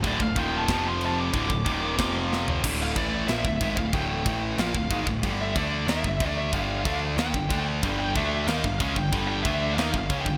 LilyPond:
<<
  \new Staff \with { instrumentName = "Lead electric guitar" } { \time 4/4 \key d \minor \tempo 4 = 185 d''8 f''8 g''8 a''4 c'''8 a''8 d'''8~ | d'''2~ d'''8 r4. | r8 f''8 d''4 e''4. f''8 | g''4. r8 f''4. r8 |
r8 e''8 d''4 e''4. e''8 | f''4. r8 g''4. r8 | r8 g''8 e''4 f''4 f''8 g''8 | r8 g''8 e''4 f''4. g''8 | }
  \new Staff \with { instrumentName = "Distorted electric guitar" } { \clef bass \time 4/4 \key d \minor <d, a, d>8 <d, a,>8 <ees, bes, ees>4 <f, c f>2 | <d, a, d>8 <d, a,>8 <ees, bes, ees>4 <f, c f>2 | <d, a, d>4 <a, e a>4 <bes, f bes>8 <d, a,>8 <gis, ees gis>8 <d, a,>8 | <d, a, d>4 <a, e a>4 <bes, f bes>8 <d, a,>8 <gis, ees gis>8 <d, a,>8 |
<g, d g>4 <d a d'>4 <ees bes ees'>8 <g, d>8 <d a d'>4 | <g, d g>4 <d a d'>4 <ees bes ees'>8 <g, d>8 <d a d'>4 | <g, d g>4 <d a d'>4 <ees bes ees'>8 <g, d>8 <cis gis cis'>8 <g, d>8 | <g, d g>4 <d a d'>4 <ees bes ees'>8 <g, d>8 <cis gis cis'>8 <g, d>8 | }
  \new Staff \with { instrumentName = "Distorted electric guitar" } { \clef bass \time 4/4 \key d \minor <d, a, d>8 <d, a,>8 <ees, bes, ees>4 <f, c f>2 | <d, a, d>8 <d, a,>8 <ees, bes, ees>4 <f, c f>2 | r1 | r1 |
r1 | r1 | <g, d g>4 <d a d'>4 <ees bes ees'>8 <g, d>8 <cis gis cis'>8 <g, d>8 | <g, d g>4 <d a d'>4 <ees bes ees'>8 <g, d>8 <cis gis cis'>8 <g, d>8 | }
  \new Staff \with { instrumentName = "Picked electric bass" } { \clef bass \time 4/4 \key d \minor d,,8 d,,8 ees,,4 f,,2 | d,,8 d,,8 ees,,4 f,,2 | d,,4 a,,4 bes,,8 d,,8 gis,,8 d,,8 | d,,4 a,,4 bes,,8 d,,8 gis,,8 d,,8 |
g,,4 d,4 ees,8 g,,8 d,4 | g,,4 d,4 ees,8 g,,8 d,4 | g,,4 d,4 ees,8 g,,8 cis,8 g,,8 | g,,4 d,4 ees,8 g,,8 cis,8 g,,8 | }
  \new DrumStaff \with { instrumentName = "Drums" } \drummode { \time 4/4 <cymc bd>8 bd8 <cymc bd>4 <cymc bd sn>4 cymc4 | <cymc bd>8 bd8 <cymc bd>4 <cymc bd sn>4 sn8 tomfh8 | <cymc bd>4 <cymc bd>4 <cymc sn>8 bd8 <cymc bd>8 bd8 | <cymc bd>4 <cymc bd>4 <cymc sn>8 bd8 <cymc bd>8 bd8 |
<cymc bd>4 <cymc bd>4 <cymc sn>8 bd8 <cymc bd>4 | <cymc bd>4 <cymc bd>4 <cymc sn>8 bd8 <cymc bd>4 | <cymc bd>4 <cymc bd>4 <cymc sn>8 bd8 <cymc bd>8 bd8 | <cymc bd>4 <cymc bd>4 <cymc sn>8 bd8 <cymc bd>8 bd8 | }
>>